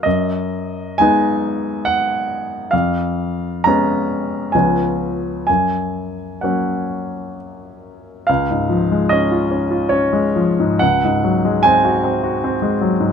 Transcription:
X:1
M:3/4
L:1/16
Q:1/4=69
K:F#
V:1 name="Grand piano"
d4 g4 f4 | e4 a4 g4 | g4 f4 z4 | [K:Db] f4 e4 d4 |
g4 a8 |]
V:2 name="Grand piano" clef=bass
F,,4 [G,B,D]8 | E,,4 [G,B,C]4 [C,,E,B,C]4 | F,,4 [F,A,C]8 | [K:Db] D,, A,, F, A, D F D F D A, F, A,, |
D,, A,, G, A, C G C G C A, G, A,, |]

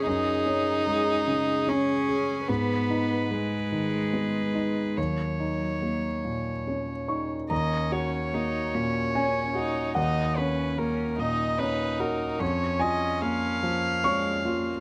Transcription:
X:1
M:3/4
L:1/16
Q:1/4=73
K:Ebm
V:1 name="Viola"
A12 | c12 | d8- d3 z | e2 d8- d2 |
e2 c2 B2 e2 c2 B2 | d2 e2 f8 |]
V:2 name="Cello"
E8 D4 | C4 A,8 | G,8 z4 | D4 E2 D2 D2 E2 |
E2 D2 D2 E2 E4 | D8 A,2 B,2 |]
V:3 name="Grand piano"
z12 | z12 | z8 z2 d'2 | b8 a4 |
g8- g2 z2 | z2 a6 d'4 |]
V:4 name="Grand piano"
[G,,A]2 D2 A,2 D,2 D2 A2 | A,,2 E2 A,2 E,2 C2 E2 | E,,2 E2 B,2 B,,2 D2 E2 | E,,2 G2 B,2 B,,2 D2 G2 |
E,,2 D2 B,2 B,,2 D2 G2 | F,,2 F2 B,2 F,2 D2 F2 |]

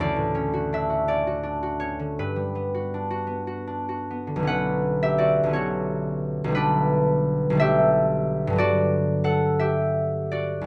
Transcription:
X:1
M:6/8
L:1/16
Q:3/8=57
K:Bm
V:1 name="Harp"
[cdfa]4 e2 d4 c2 | B12 | [Bf]3 [Ge] [Fd]2 [Fc]6 | [DB]6 [Ge]6 |
[Fd]4 [Af]2 [Ge]4 [Fd]2 |]
V:2 name="Harp"
[D,,CA] A,, C F D F C F D F C D, | G,, G, B, F D F B, F D F B, D, | [B,,,D,B,C]6 [B,,,D,B,C]6 | [B,,,D,G,A,]6 [B,,,D,G,A,]6 |
[G,,D,F,B,]12 |]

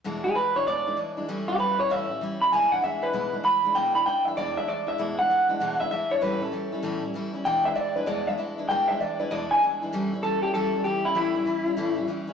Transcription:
X:1
M:4/4
L:1/8
Q:"Swing" 1/4=195
K:Emix
V:1 name="Clean electric guitar"
z G B c d2 z2 | z =G B c e2 z b | g f e B2 z b2 | =g b g e d e d e |
z f4 e e c | B A6 z | =g e d B d e z2 | =g e d B d ^g z2 |
z2 A =G A2 G E | E6 z2 |]
V:2 name="Steel-string acoustic guitar" clef=bass
[E,,B,,E,G,DE] [E,G,DE] [E,G,DE] [E,G,DE] [E,,B,,E,G,DE] [E,G,DE] [E,G,DE] [E,G,DE] | [A,,E,=G,CE] [G,CE] [E,G,CE] [G,CE] [A,,E,G,CE] [G,CE] [E,G,CE] [G,CE] | [E,,B,,E,G,DE] [E,G,DE] [E,G,DE] [E,G,DE] [E,,B,,E,G,DE] [E,G,DE] [E,G,DE] [E,G,DE] | [E,,B,,E,G,DE] [E,G,DE] [E,G,DE] [E,G,DE] [E,,B,,E,G,DE] [E,G,DE] [E,G,DE] [E,G,DE] |
[E,,B,,E,G,DE] [E,G,DE] [E,G,DE] [E,G,DE] [E,,B,,E,G,DE] [E,G,DE] [E,G,DE] [E,G,DE] | [A,,E,=G,CE] [G,CE] [E,G,CE] [G,CE] [A,,E,G,CE] [G,CE] [E,G,CE] [G,CE] | [E,,B,,E,G,DE] [E,G,DE] [E,G,DE] [E,G,DE] [E,,B,,E,G,DE] [E,G,DE] [E,G,DE] [E,G,DE] | [E,,B,,E,G,DE] [E,G,DE] [E,G,DE] [E,G,DE] [E,,B,,E,G,DE] [E,G,DE] [E,G,DE] [E,G,DE] |
[A,,E,=G,CE] [G,CE] [E,G,CE] [G,CE] [A,,E,G,CE] [G,CE] [E,G,CE] [G,CE] | [A,,E,=G,CE] [G,CE] [E,G,CE] [G,CE] [A,,E,G,CE] [G,CE] [E,G,CE] [G,CE] |]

